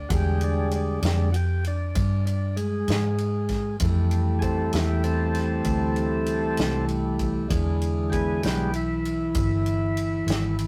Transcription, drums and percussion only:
0.10 kick, ride
0.41 ride
0.71 ride
1.02 snare, ride
1.34 ride
1.64 ride
1.95 kick, ride
2.27 ride
2.57 ride
2.88 snare, ride
3.18 ride
3.49 kick, snare, ride
3.80 kick, ride
4.11 ride
4.42 kick, ride
4.73 snare, ride
5.04 ride
5.35 snare, ride
5.64 kick, ride
5.96 ride
6.26 ride
6.57 snare, ride
6.88 ride
7.19 kick, ride
7.50 kick, ride
7.82 ride
8.12 kick, ride
8.43 snare, ride
8.73 ride
9.05 ride
9.35 kick, ride
9.66 ride
9.97 ride
10.28 snare, ride
10.59 ride

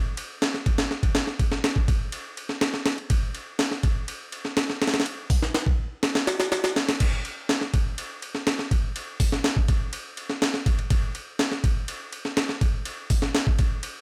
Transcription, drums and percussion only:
0.17 ride
0.42 snare, ride
0.54 snare
0.66 kick, ride
0.78 snare, ride
0.91 snare
1.03 kick, ride
1.15 snare, ride
1.27 snare
1.39 kick, ride
1.52 snare
1.64 snare, ride
1.76 kick
1.88 kick, ride
2.12 ride
2.37 ride
2.49 snare
2.61 snare, ride
2.74 snare
2.86 snare, ride
2.98 ride
3.10 kick, ride
3.35 ride
3.59 snare, ride
3.71 snare
3.83 kick, ride
4.08 ride
4.32 ride
4.45 snare
4.57 snare, ride
4.70 snare
4.82 snare, ride
4.87 snare, ride
4.94 snare, ride
5.00 snare, ride
5.06 ride
5.30 kick, open hi-hat
5.42 snare
5.54 snare, ride
5.66 kick
6.03 snare, ride
6.15 snare, ride
6.27 snare, ride
6.40 snare, ride
6.52 snare, ride
6.64 snare, ride
6.76 snare, ride
6.89 snare, ride
7.00 kick, crash, ride
7.25 ride
7.49 snare, ride
7.61 snare
7.74 kick, ride
7.98 ride
8.22 ride
8.35 snare
8.47 snare, ride
8.59 snare
8.71 kick, ride
8.96 ride
9.20 kick, open hi-hat
9.32 snare
9.44 snare, ride
9.56 kick
9.68 kick, ride
9.93 ride
10.17 ride
10.30 snare
10.42 snare, ride
10.54 snare
10.66 kick, ride
10.79 ride
10.90 kick, ride
11.15 ride
11.39 snare, ride
11.52 snare
11.64 kick, ride
11.88 ride
12.13 ride
12.25 snare
12.37 snare, ride
12.49 snare
12.61 kick, ride
12.85 ride
13.10 kick, open hi-hat
13.22 snare
13.35 snare, ride
13.47 kick
13.59 kick, ride
13.83 ride

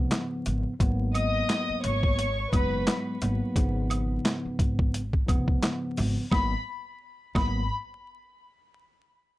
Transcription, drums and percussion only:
0.11 snare, clap, closed hi-hat, shaker
0.46 closed hi-hat, shaker
0.80 kick, closed hi-hat, shaker
1.15 closed hi-hat, high woodblock, shaker
1.49 snare, clap, closed hi-hat, shaker
1.84 closed hi-hat, shaker
2.03 kick
2.19 closed hi-hat, shaker
2.53 kick, closed hi-hat, high woodblock, shaker
2.87 snare, clap, closed hi-hat, shaker
3.21 closed hi-hat, shaker
3.56 kick, closed hi-hat, shaker
3.90 closed hi-hat, high woodblock, shaker
4.25 snare, clap, closed hi-hat, shaker
4.59 kick, closed hi-hat, shaker
4.79 kick
4.94 closed hi-hat, shaker
5.13 kick
5.28 kick, closed hi-hat, high woodblock, shaker
5.48 kick
5.62 snare, clap, closed hi-hat, shaker
5.97 open hi-hat, shaker
6.31 kick, snare, high woodblock
7.35 kick, snare, high woodblock

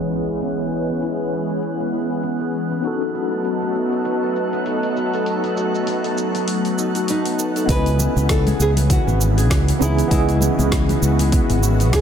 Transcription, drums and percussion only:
0.12 cabasa
0.29 open hi-hat, cabasa
0.42 open hi-hat, cabasa
0.59 open hi-hat, cabasa
0.72 cabasa
0.90 cabasa
1.02 open hi-hat, cabasa
1.20 open hi-hat, cabasa
1.33 cabasa
1.50 open hi-hat, cabasa
1.63 open hi-hat, cabasa
1.80 open hi-hat, cabasa
1.94 cabasa
2.10 open hi-hat, cabasa
2.23 open hi-hat, cabasa
2.41 open hi-hat, cabasa
2.54 cabasa
2.71 open hi-hat, cabasa
2.84 open hi-hat, cabasa
3.01 open hi-hat, cabasa
3.15 cabasa
3.32 cabasa
3.45 open hi-hat, cabasa
3.62 open hi-hat, cabasa
3.75 cabasa
3.92 open hi-hat, cabasa
4.05 open hi-hat, cabasa
4.23 cabasa
4.36 cabasa
4.53 open hi-hat, cabasa
4.66 open hi-hat, cabasa
4.83 open hi-hat, cabasa
4.97 cabasa
5.14 open hi-hat, cabasa
5.26 open hi-hat, cabasa
5.44 open hi-hat, cabasa
5.57 cabasa
5.75 cabasa
5.87 open hi-hat, cabasa
6.04 open hi-hat, cabasa
6.18 cabasa
6.35 open hi-hat, cabasa
6.48 open hi-hat, cabasa
6.65 open hi-hat, cabasa
6.78 cabasa
6.95 open hi-hat, cabasa
7.08 open hi-hat, cabasa
7.26 open hi-hat, cabasa
7.39 cabasa
7.56 open hi-hat, cabasa
7.69 kick, open hi-hat, cabasa
7.86 open hi-hat, cabasa
8.00 low conga, cabasa
8.17 high conga, cabasa
8.29 kick, snare, open hi-hat, cabasa
8.47 open hi-hat, low conga, cabasa
8.60 cabasa
8.77 open hi-hat, low conga, cabasa
8.90 kick, open hi-hat, cabasa
9.08 high conga, cabasa
9.21 cabasa
9.38 open hi-hat, cabasa
9.50 kick, snare, open hi-hat, cabasa
9.68 open hi-hat, cabasa
9.81 high conga, cabasa
9.98 open hi-hat, cabasa
10.11 kick, open hi-hat, cabasa
10.29 open hi-hat, cabasa
10.41 low conga, cabasa
10.59 high conga, cabasa
10.72 kick, snare, open hi-hat, cabasa
10.89 open hi-hat, low conga, cabasa
11.03 cabasa
11.19 open hi-hat, low conga, cabasa
11.32 kick, open hi-hat, cabasa
11.50 open hi-hat, high conga, cabasa
11.63 cabasa
11.80 open hi-hat, cabasa
11.93 kick, snare, open hi-hat, cabasa

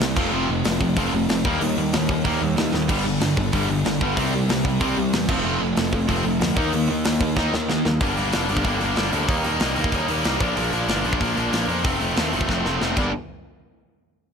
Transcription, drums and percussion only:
0.01 snare, open hi-hat
0.17 kick, crash
0.65 snare, open hi-hat
0.81 kick
0.96 kick, open hi-hat
1.29 snare, open hi-hat
1.45 kick
1.61 open hi-hat
1.93 snare, open hi-hat
2.09 kick
2.25 kick, open hi-hat
2.57 snare, open hi-hat
2.74 snare
2.89 kick, open hi-hat, crash
3.21 snare, open hi-hat
3.37 kick
3.53 kick, open hi-hat
3.85 snare, open hi-hat
4.01 kick
4.17 kick, open hi-hat
4.49 snare, open hi-hat
4.65 kick
4.81 kick, open hi-hat
5.13 snare, open hi-hat
5.29 kick, crash
5.76 snare, open hi-hat
5.93 kick
6.09 kick, open hi-hat
6.41 snare, open hi-hat
6.57 kick
6.73 open hi-hat
7.05 snare, open hi-hat
7.21 kick
7.37 kick, snare
7.54 snare
7.70 snare
7.85 snare
8.01 kick, open hi-hat
8.17 open hi-hat
8.33 snare, open hi-hat
8.49 open hi-hat
8.57 kick
8.65 kick, open hi-hat
8.81 open hi-hat
8.96 snare, open hi-hat
9.13 open hi-hat
9.28 kick, open hi-hat
9.44 open hi-hat
9.60 snare, open hi-hat
9.76 open hi-hat
9.84 kick
9.92 kick, open hi-hat
10.08 open hi-hat
10.24 snare, open hi-hat
10.40 kick, open hi-hat
10.57 open hi-hat
10.73 open hi-hat
10.89 snare, open hi-hat
11.05 open hi-hat
11.13 kick
11.21 kick, open hi-hat
11.37 open hi-hat
11.53 snare, open hi-hat
11.69 open hi-hat
11.84 kick, open hi-hat
12.01 open hi-hat
12.17 snare, open hi-hat
12.33 open hi-hat
12.41 kick
12.49 kick, snare
12.66 snare
12.82 snare
12.97 kick, crash

